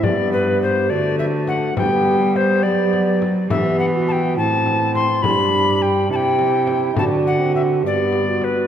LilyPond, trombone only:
\new Staff \with { instrumentName = "Trombone" } { \time 6/8 \key g \major \tempo 4. = 69 b4. a4. | b4. b4 r8 | b4. c'4. | d'4. e'4. |
d'8. c'8. b4. | }